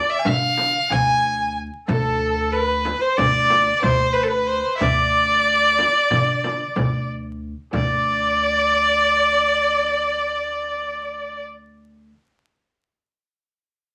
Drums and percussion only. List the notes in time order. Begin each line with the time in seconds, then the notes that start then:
0.25 frame drum, darbuka dum
0.58 darbuka tek, frame drum
0.76 darbuka ka
0.90 frame drum, darbuka dum
1.25 darbuka ka
1.88 frame drum, darbuka dum
2.54 darbuka ka
2.85 darbuka tek, frame drum
3.18 frame drum, darbuka dum
3.50 darbuka tek, frame drum
3.68 darbuka ka
3.83 frame drum, darbuka dum
4.16 darbuka ka
4.81 frame drum, darbuka dum
5.78 darbuka tek, frame drum
6.11 frame drum, darbuka dum
6.44 darbuka tek, frame drum
6.61 darbuka ka
6.76 frame drum, darbuka dum
7.73 frame drum, darbuka dum